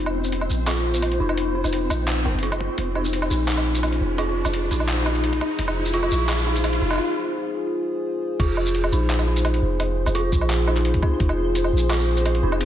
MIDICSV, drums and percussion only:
0, 0, Header, 1, 2, 480
1, 0, Start_track
1, 0, Key_signature, -4, "minor"
1, 0, Tempo, 350877
1, 1885, Time_signature, 4, 2, 24, 8
1, 17305, End_track
2, 0, Start_track
2, 0, Title_t, "Drums"
2, 87, Note_on_c, 9, 77, 78
2, 224, Note_off_c, 9, 77, 0
2, 328, Note_on_c, 9, 82, 57
2, 443, Note_on_c, 9, 42, 65
2, 464, Note_off_c, 9, 82, 0
2, 566, Note_on_c, 9, 77, 53
2, 579, Note_off_c, 9, 42, 0
2, 681, Note_on_c, 9, 82, 64
2, 703, Note_off_c, 9, 77, 0
2, 818, Note_off_c, 9, 82, 0
2, 921, Note_on_c, 9, 39, 115
2, 921, Note_on_c, 9, 42, 76
2, 921, Note_on_c, 9, 77, 73
2, 1045, Note_on_c, 9, 82, 33
2, 1058, Note_off_c, 9, 39, 0
2, 1058, Note_off_c, 9, 42, 0
2, 1058, Note_off_c, 9, 77, 0
2, 1182, Note_off_c, 9, 82, 0
2, 1287, Note_on_c, 9, 42, 38
2, 1287, Note_on_c, 9, 82, 63
2, 1400, Note_off_c, 9, 42, 0
2, 1400, Note_on_c, 9, 42, 64
2, 1400, Note_on_c, 9, 77, 48
2, 1424, Note_off_c, 9, 82, 0
2, 1527, Note_off_c, 9, 42, 0
2, 1527, Note_on_c, 9, 42, 38
2, 1537, Note_off_c, 9, 77, 0
2, 1664, Note_off_c, 9, 42, 0
2, 1767, Note_on_c, 9, 77, 75
2, 1881, Note_on_c, 9, 42, 80
2, 1903, Note_off_c, 9, 77, 0
2, 2017, Note_off_c, 9, 42, 0
2, 2247, Note_on_c, 9, 77, 48
2, 2247, Note_on_c, 9, 82, 58
2, 2361, Note_on_c, 9, 42, 66
2, 2383, Note_off_c, 9, 77, 0
2, 2383, Note_off_c, 9, 82, 0
2, 2498, Note_off_c, 9, 42, 0
2, 2602, Note_on_c, 9, 36, 64
2, 2602, Note_on_c, 9, 77, 75
2, 2602, Note_on_c, 9, 82, 68
2, 2739, Note_off_c, 9, 36, 0
2, 2739, Note_off_c, 9, 77, 0
2, 2739, Note_off_c, 9, 82, 0
2, 2841, Note_on_c, 9, 39, 119
2, 2841, Note_on_c, 9, 42, 77
2, 2978, Note_off_c, 9, 39, 0
2, 2978, Note_off_c, 9, 42, 0
2, 3081, Note_on_c, 9, 77, 51
2, 3218, Note_off_c, 9, 77, 0
2, 3265, Note_on_c, 9, 42, 35
2, 3322, Note_off_c, 9, 42, 0
2, 3322, Note_on_c, 9, 42, 60
2, 3446, Note_on_c, 9, 36, 61
2, 3447, Note_off_c, 9, 42, 0
2, 3447, Note_on_c, 9, 42, 38
2, 3447, Note_on_c, 9, 77, 75
2, 3562, Note_off_c, 9, 36, 0
2, 3562, Note_on_c, 9, 36, 108
2, 3583, Note_off_c, 9, 42, 0
2, 3583, Note_off_c, 9, 77, 0
2, 3699, Note_off_c, 9, 36, 0
2, 3801, Note_on_c, 9, 42, 76
2, 3802, Note_on_c, 9, 36, 114
2, 3938, Note_off_c, 9, 42, 0
2, 3939, Note_off_c, 9, 36, 0
2, 4041, Note_on_c, 9, 77, 52
2, 4167, Note_on_c, 9, 82, 63
2, 4178, Note_off_c, 9, 77, 0
2, 4283, Note_on_c, 9, 42, 63
2, 4304, Note_off_c, 9, 82, 0
2, 4407, Note_on_c, 9, 77, 76
2, 4420, Note_off_c, 9, 42, 0
2, 4523, Note_on_c, 9, 82, 68
2, 4544, Note_off_c, 9, 77, 0
2, 4660, Note_off_c, 9, 82, 0
2, 4762, Note_on_c, 9, 39, 119
2, 4762, Note_on_c, 9, 42, 75
2, 4888, Note_on_c, 9, 77, 51
2, 4888, Note_on_c, 9, 82, 36
2, 4899, Note_off_c, 9, 39, 0
2, 4899, Note_off_c, 9, 42, 0
2, 5025, Note_off_c, 9, 77, 0
2, 5025, Note_off_c, 9, 82, 0
2, 5128, Note_on_c, 9, 42, 34
2, 5128, Note_on_c, 9, 82, 66
2, 5241, Note_off_c, 9, 42, 0
2, 5241, Note_on_c, 9, 42, 62
2, 5241, Note_on_c, 9, 77, 74
2, 5264, Note_off_c, 9, 82, 0
2, 5366, Note_off_c, 9, 42, 0
2, 5366, Note_on_c, 9, 42, 37
2, 5378, Note_off_c, 9, 77, 0
2, 5503, Note_off_c, 9, 42, 0
2, 5721, Note_on_c, 9, 42, 77
2, 5721, Note_on_c, 9, 77, 53
2, 5858, Note_off_c, 9, 42, 0
2, 5858, Note_off_c, 9, 77, 0
2, 6086, Note_on_c, 9, 77, 76
2, 6086, Note_on_c, 9, 82, 68
2, 6203, Note_on_c, 9, 42, 61
2, 6223, Note_off_c, 9, 77, 0
2, 6223, Note_off_c, 9, 82, 0
2, 6340, Note_off_c, 9, 42, 0
2, 6442, Note_on_c, 9, 36, 57
2, 6445, Note_on_c, 9, 82, 74
2, 6568, Note_on_c, 9, 77, 50
2, 6579, Note_off_c, 9, 36, 0
2, 6581, Note_off_c, 9, 82, 0
2, 6682, Note_on_c, 9, 39, 110
2, 6682, Note_on_c, 9, 42, 77
2, 6705, Note_off_c, 9, 77, 0
2, 6819, Note_off_c, 9, 39, 0
2, 6819, Note_off_c, 9, 42, 0
2, 6922, Note_on_c, 9, 77, 80
2, 7047, Note_on_c, 9, 42, 35
2, 7059, Note_off_c, 9, 77, 0
2, 7164, Note_off_c, 9, 42, 0
2, 7164, Note_on_c, 9, 42, 61
2, 7287, Note_on_c, 9, 36, 62
2, 7290, Note_off_c, 9, 42, 0
2, 7290, Note_on_c, 9, 42, 38
2, 7403, Note_off_c, 9, 36, 0
2, 7403, Note_on_c, 9, 36, 102
2, 7403, Note_on_c, 9, 77, 52
2, 7426, Note_off_c, 9, 42, 0
2, 7539, Note_off_c, 9, 36, 0
2, 7540, Note_off_c, 9, 77, 0
2, 7643, Note_on_c, 9, 36, 107
2, 7643, Note_on_c, 9, 42, 75
2, 7768, Note_on_c, 9, 77, 88
2, 7780, Note_off_c, 9, 36, 0
2, 7780, Note_off_c, 9, 42, 0
2, 7905, Note_off_c, 9, 77, 0
2, 8007, Note_on_c, 9, 82, 71
2, 8121, Note_on_c, 9, 42, 64
2, 8144, Note_off_c, 9, 82, 0
2, 8247, Note_on_c, 9, 77, 55
2, 8257, Note_off_c, 9, 42, 0
2, 8363, Note_on_c, 9, 82, 74
2, 8384, Note_off_c, 9, 77, 0
2, 8499, Note_off_c, 9, 82, 0
2, 8603, Note_on_c, 9, 39, 112
2, 8603, Note_on_c, 9, 42, 77
2, 8603, Note_on_c, 9, 77, 78
2, 8727, Note_on_c, 9, 82, 40
2, 8740, Note_off_c, 9, 39, 0
2, 8740, Note_off_c, 9, 42, 0
2, 8740, Note_off_c, 9, 77, 0
2, 8864, Note_off_c, 9, 82, 0
2, 8967, Note_on_c, 9, 42, 37
2, 8967, Note_on_c, 9, 82, 72
2, 9083, Note_off_c, 9, 42, 0
2, 9083, Note_on_c, 9, 42, 65
2, 9083, Note_on_c, 9, 77, 54
2, 9104, Note_off_c, 9, 82, 0
2, 9208, Note_off_c, 9, 42, 0
2, 9208, Note_on_c, 9, 42, 40
2, 9220, Note_off_c, 9, 77, 0
2, 9345, Note_off_c, 9, 42, 0
2, 9447, Note_on_c, 9, 77, 76
2, 9482, Note_off_c, 9, 77, 0
2, 9482, Note_on_c, 9, 77, 68
2, 9516, Note_off_c, 9, 77, 0
2, 9516, Note_on_c, 9, 77, 53
2, 9548, Note_off_c, 9, 77, 0
2, 9548, Note_on_c, 9, 77, 44
2, 9685, Note_off_c, 9, 77, 0
2, 11485, Note_on_c, 9, 36, 117
2, 11486, Note_on_c, 9, 42, 85
2, 11486, Note_on_c, 9, 49, 108
2, 11622, Note_off_c, 9, 36, 0
2, 11623, Note_off_c, 9, 42, 0
2, 11623, Note_off_c, 9, 49, 0
2, 11725, Note_on_c, 9, 77, 57
2, 11850, Note_on_c, 9, 82, 65
2, 11862, Note_off_c, 9, 77, 0
2, 11965, Note_on_c, 9, 42, 70
2, 11987, Note_off_c, 9, 82, 0
2, 12091, Note_on_c, 9, 77, 86
2, 12102, Note_off_c, 9, 42, 0
2, 12205, Note_on_c, 9, 82, 72
2, 12228, Note_off_c, 9, 77, 0
2, 12342, Note_off_c, 9, 82, 0
2, 12446, Note_on_c, 9, 39, 117
2, 12446, Note_on_c, 9, 42, 88
2, 12570, Note_on_c, 9, 77, 56
2, 12570, Note_on_c, 9, 82, 38
2, 12583, Note_off_c, 9, 39, 0
2, 12583, Note_off_c, 9, 42, 0
2, 12706, Note_off_c, 9, 77, 0
2, 12706, Note_off_c, 9, 82, 0
2, 12810, Note_on_c, 9, 42, 39
2, 12810, Note_on_c, 9, 82, 64
2, 12925, Note_off_c, 9, 42, 0
2, 12925, Note_on_c, 9, 42, 73
2, 12925, Note_on_c, 9, 77, 85
2, 12946, Note_off_c, 9, 82, 0
2, 13050, Note_off_c, 9, 42, 0
2, 13050, Note_on_c, 9, 42, 41
2, 13061, Note_off_c, 9, 77, 0
2, 13187, Note_off_c, 9, 42, 0
2, 13405, Note_on_c, 9, 42, 85
2, 13405, Note_on_c, 9, 77, 57
2, 13541, Note_off_c, 9, 42, 0
2, 13541, Note_off_c, 9, 77, 0
2, 13768, Note_on_c, 9, 77, 75
2, 13768, Note_on_c, 9, 82, 67
2, 13884, Note_on_c, 9, 42, 72
2, 13905, Note_off_c, 9, 77, 0
2, 13905, Note_off_c, 9, 82, 0
2, 14021, Note_off_c, 9, 42, 0
2, 14123, Note_on_c, 9, 82, 69
2, 14125, Note_on_c, 9, 36, 64
2, 14247, Note_on_c, 9, 77, 57
2, 14260, Note_off_c, 9, 82, 0
2, 14262, Note_off_c, 9, 36, 0
2, 14363, Note_on_c, 9, 39, 127
2, 14363, Note_on_c, 9, 42, 85
2, 14384, Note_off_c, 9, 77, 0
2, 14500, Note_off_c, 9, 39, 0
2, 14500, Note_off_c, 9, 42, 0
2, 14604, Note_on_c, 9, 77, 79
2, 14729, Note_on_c, 9, 39, 39
2, 14729, Note_on_c, 9, 42, 40
2, 14740, Note_off_c, 9, 77, 0
2, 14843, Note_off_c, 9, 42, 0
2, 14843, Note_on_c, 9, 42, 70
2, 14866, Note_off_c, 9, 39, 0
2, 14967, Note_off_c, 9, 42, 0
2, 14967, Note_on_c, 9, 42, 41
2, 14969, Note_on_c, 9, 36, 67
2, 15081, Note_on_c, 9, 77, 53
2, 15084, Note_off_c, 9, 36, 0
2, 15084, Note_on_c, 9, 36, 115
2, 15103, Note_off_c, 9, 42, 0
2, 15218, Note_off_c, 9, 77, 0
2, 15221, Note_off_c, 9, 36, 0
2, 15323, Note_on_c, 9, 42, 84
2, 15324, Note_on_c, 9, 36, 123
2, 15447, Note_on_c, 9, 77, 77
2, 15459, Note_off_c, 9, 42, 0
2, 15461, Note_off_c, 9, 36, 0
2, 15584, Note_off_c, 9, 77, 0
2, 15803, Note_on_c, 9, 42, 70
2, 15803, Note_on_c, 9, 82, 63
2, 15929, Note_on_c, 9, 77, 52
2, 15940, Note_off_c, 9, 42, 0
2, 15940, Note_off_c, 9, 82, 0
2, 16066, Note_off_c, 9, 77, 0
2, 16108, Note_on_c, 9, 82, 65
2, 16245, Note_off_c, 9, 82, 0
2, 16285, Note_on_c, 9, 39, 127
2, 16285, Note_on_c, 9, 42, 85
2, 16285, Note_on_c, 9, 77, 81
2, 16409, Note_on_c, 9, 82, 36
2, 16422, Note_off_c, 9, 39, 0
2, 16422, Note_off_c, 9, 42, 0
2, 16422, Note_off_c, 9, 77, 0
2, 16446, Note_off_c, 9, 82, 0
2, 16446, Note_on_c, 9, 82, 28
2, 16486, Note_off_c, 9, 82, 0
2, 16486, Note_on_c, 9, 82, 24
2, 16523, Note_off_c, 9, 82, 0
2, 16523, Note_on_c, 9, 82, 19
2, 16566, Note_off_c, 9, 82, 0
2, 16566, Note_on_c, 9, 82, 16
2, 16606, Note_off_c, 9, 82, 0
2, 16606, Note_on_c, 9, 82, 13
2, 16650, Note_off_c, 9, 82, 0
2, 16650, Note_on_c, 9, 42, 39
2, 16650, Note_on_c, 9, 82, 62
2, 16765, Note_off_c, 9, 42, 0
2, 16765, Note_on_c, 9, 42, 64
2, 16765, Note_on_c, 9, 77, 51
2, 16787, Note_off_c, 9, 82, 0
2, 16892, Note_off_c, 9, 42, 0
2, 16892, Note_on_c, 9, 42, 39
2, 16902, Note_off_c, 9, 77, 0
2, 17029, Note_off_c, 9, 42, 0
2, 17131, Note_on_c, 9, 77, 81
2, 17245, Note_on_c, 9, 42, 81
2, 17267, Note_off_c, 9, 77, 0
2, 17305, Note_off_c, 9, 42, 0
2, 17305, End_track
0, 0, End_of_file